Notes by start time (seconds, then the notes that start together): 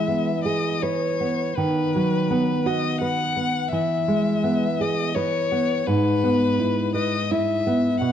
Already playing: E3 G#3 E5
0.08 B3
0.44 G#4 D#5
0.82 B4 C#5
1.20 B3
1.56 D#3 B4
1.95 F#3
2.30 B3
2.66 F#4 D#5
3.01 B4 F#5
3.36 B3
3.72 E3 E5
4.08 G#3
4.44 B3
4.80 G#4 D#5
5.15 B4 C#5
5.52 B3
5.86 G#2 B4
6.24 B3
6.59 E4
6.94 B4 D#5
7.31 E4 E5
7.67 B3
8.01 B2 F#5